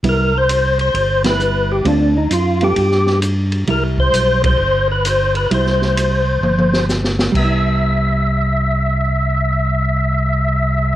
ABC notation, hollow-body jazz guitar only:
X:1
M:4/4
L:1/8
Q:"Swing" 1/4=131
K:C
V:1 name="Hollow-body jazz guitar"
[G,B,E] z4 [G,B,E]3 | [D,A,CF] z2 [G,B,FA] z4 | [G,E]3 z4 z | [G,E]3 z4 z |
[G,B,E]8- | [G,B,E]8 |]